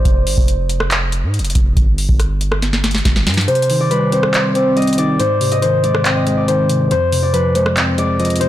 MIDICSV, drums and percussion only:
0, 0, Header, 1, 2, 480
1, 0, Start_track
1, 0, Tempo, 428571
1, 59, Time_signature, 4, 2, 24, 8
1, 9505, End_track
2, 0, Start_track
2, 0, Title_t, "Drums"
2, 59, Note_on_c, 9, 36, 111
2, 59, Note_on_c, 9, 42, 77
2, 171, Note_off_c, 9, 36, 0
2, 171, Note_off_c, 9, 42, 0
2, 299, Note_on_c, 9, 46, 86
2, 411, Note_off_c, 9, 46, 0
2, 420, Note_on_c, 9, 36, 88
2, 532, Note_off_c, 9, 36, 0
2, 539, Note_on_c, 9, 42, 78
2, 651, Note_off_c, 9, 42, 0
2, 778, Note_on_c, 9, 42, 70
2, 890, Note_off_c, 9, 42, 0
2, 899, Note_on_c, 9, 37, 104
2, 1011, Note_off_c, 9, 37, 0
2, 1020, Note_on_c, 9, 39, 122
2, 1020, Note_on_c, 9, 42, 74
2, 1132, Note_off_c, 9, 39, 0
2, 1132, Note_off_c, 9, 42, 0
2, 1258, Note_on_c, 9, 42, 69
2, 1370, Note_off_c, 9, 42, 0
2, 1499, Note_on_c, 9, 42, 47
2, 1559, Note_off_c, 9, 42, 0
2, 1559, Note_on_c, 9, 42, 58
2, 1619, Note_off_c, 9, 42, 0
2, 1619, Note_on_c, 9, 42, 70
2, 1679, Note_off_c, 9, 42, 0
2, 1679, Note_on_c, 9, 42, 81
2, 1738, Note_off_c, 9, 42, 0
2, 1738, Note_on_c, 9, 42, 92
2, 1740, Note_on_c, 9, 36, 100
2, 1850, Note_off_c, 9, 42, 0
2, 1852, Note_off_c, 9, 36, 0
2, 1979, Note_on_c, 9, 36, 117
2, 1979, Note_on_c, 9, 42, 80
2, 2091, Note_off_c, 9, 36, 0
2, 2091, Note_off_c, 9, 42, 0
2, 2220, Note_on_c, 9, 46, 83
2, 2332, Note_off_c, 9, 46, 0
2, 2340, Note_on_c, 9, 36, 88
2, 2452, Note_off_c, 9, 36, 0
2, 2459, Note_on_c, 9, 37, 60
2, 2459, Note_on_c, 9, 42, 77
2, 2571, Note_off_c, 9, 37, 0
2, 2571, Note_off_c, 9, 42, 0
2, 2698, Note_on_c, 9, 42, 69
2, 2810, Note_off_c, 9, 42, 0
2, 2819, Note_on_c, 9, 37, 101
2, 2931, Note_off_c, 9, 37, 0
2, 2939, Note_on_c, 9, 38, 60
2, 2940, Note_on_c, 9, 42, 73
2, 3051, Note_off_c, 9, 38, 0
2, 3052, Note_off_c, 9, 42, 0
2, 3059, Note_on_c, 9, 38, 55
2, 3171, Note_off_c, 9, 38, 0
2, 3179, Note_on_c, 9, 38, 73
2, 3179, Note_on_c, 9, 42, 69
2, 3259, Note_off_c, 9, 42, 0
2, 3259, Note_on_c, 9, 42, 55
2, 3291, Note_off_c, 9, 38, 0
2, 3299, Note_on_c, 9, 38, 71
2, 3339, Note_off_c, 9, 42, 0
2, 3339, Note_on_c, 9, 42, 41
2, 3411, Note_off_c, 9, 38, 0
2, 3419, Note_on_c, 9, 36, 94
2, 3419, Note_on_c, 9, 38, 84
2, 3420, Note_off_c, 9, 42, 0
2, 3420, Note_on_c, 9, 42, 79
2, 3531, Note_off_c, 9, 36, 0
2, 3531, Note_off_c, 9, 38, 0
2, 3532, Note_off_c, 9, 42, 0
2, 3539, Note_on_c, 9, 38, 75
2, 3651, Note_off_c, 9, 38, 0
2, 3659, Note_on_c, 9, 38, 103
2, 3659, Note_on_c, 9, 42, 55
2, 3739, Note_off_c, 9, 42, 0
2, 3739, Note_on_c, 9, 42, 63
2, 3771, Note_off_c, 9, 38, 0
2, 3779, Note_on_c, 9, 38, 93
2, 3819, Note_off_c, 9, 42, 0
2, 3819, Note_on_c, 9, 42, 70
2, 3891, Note_off_c, 9, 38, 0
2, 3899, Note_off_c, 9, 42, 0
2, 3899, Note_on_c, 9, 42, 75
2, 3979, Note_off_c, 9, 42, 0
2, 3979, Note_on_c, 9, 42, 83
2, 4059, Note_off_c, 9, 42, 0
2, 4059, Note_on_c, 9, 42, 95
2, 4140, Note_on_c, 9, 46, 80
2, 4171, Note_off_c, 9, 42, 0
2, 4252, Note_off_c, 9, 46, 0
2, 4379, Note_on_c, 9, 42, 78
2, 4491, Note_off_c, 9, 42, 0
2, 4618, Note_on_c, 9, 42, 72
2, 4730, Note_off_c, 9, 42, 0
2, 4739, Note_on_c, 9, 37, 104
2, 4851, Note_off_c, 9, 37, 0
2, 4860, Note_on_c, 9, 39, 119
2, 4860, Note_on_c, 9, 42, 73
2, 4972, Note_off_c, 9, 39, 0
2, 4972, Note_off_c, 9, 42, 0
2, 5098, Note_on_c, 9, 42, 68
2, 5210, Note_off_c, 9, 42, 0
2, 5339, Note_on_c, 9, 42, 47
2, 5399, Note_off_c, 9, 42, 0
2, 5399, Note_on_c, 9, 42, 60
2, 5459, Note_off_c, 9, 42, 0
2, 5459, Note_on_c, 9, 42, 68
2, 5519, Note_off_c, 9, 42, 0
2, 5519, Note_on_c, 9, 42, 80
2, 5578, Note_off_c, 9, 42, 0
2, 5578, Note_on_c, 9, 42, 92
2, 5690, Note_off_c, 9, 42, 0
2, 5819, Note_on_c, 9, 42, 78
2, 5931, Note_off_c, 9, 42, 0
2, 6059, Note_on_c, 9, 42, 64
2, 6059, Note_on_c, 9, 46, 82
2, 6171, Note_off_c, 9, 42, 0
2, 6171, Note_off_c, 9, 46, 0
2, 6178, Note_on_c, 9, 42, 65
2, 6290, Note_off_c, 9, 42, 0
2, 6299, Note_on_c, 9, 42, 81
2, 6411, Note_off_c, 9, 42, 0
2, 6538, Note_on_c, 9, 42, 72
2, 6650, Note_off_c, 9, 42, 0
2, 6659, Note_on_c, 9, 37, 103
2, 6771, Note_off_c, 9, 37, 0
2, 6780, Note_on_c, 9, 39, 119
2, 6780, Note_on_c, 9, 42, 74
2, 6892, Note_off_c, 9, 39, 0
2, 6892, Note_off_c, 9, 42, 0
2, 7018, Note_on_c, 9, 42, 69
2, 7130, Note_off_c, 9, 42, 0
2, 7260, Note_on_c, 9, 42, 76
2, 7372, Note_off_c, 9, 42, 0
2, 7498, Note_on_c, 9, 42, 90
2, 7610, Note_off_c, 9, 42, 0
2, 7739, Note_on_c, 9, 42, 78
2, 7851, Note_off_c, 9, 42, 0
2, 7979, Note_on_c, 9, 46, 85
2, 8091, Note_off_c, 9, 46, 0
2, 8219, Note_on_c, 9, 42, 80
2, 8331, Note_off_c, 9, 42, 0
2, 8458, Note_on_c, 9, 42, 70
2, 8570, Note_off_c, 9, 42, 0
2, 8579, Note_on_c, 9, 37, 101
2, 8691, Note_off_c, 9, 37, 0
2, 8700, Note_on_c, 9, 39, 120
2, 8700, Note_on_c, 9, 42, 75
2, 8812, Note_off_c, 9, 39, 0
2, 8812, Note_off_c, 9, 42, 0
2, 8939, Note_on_c, 9, 42, 70
2, 9051, Note_off_c, 9, 42, 0
2, 9179, Note_on_c, 9, 42, 47
2, 9239, Note_off_c, 9, 42, 0
2, 9239, Note_on_c, 9, 42, 57
2, 9299, Note_off_c, 9, 42, 0
2, 9299, Note_on_c, 9, 42, 66
2, 9359, Note_off_c, 9, 42, 0
2, 9359, Note_on_c, 9, 42, 77
2, 9418, Note_off_c, 9, 42, 0
2, 9418, Note_on_c, 9, 42, 91
2, 9505, Note_off_c, 9, 42, 0
2, 9505, End_track
0, 0, End_of_file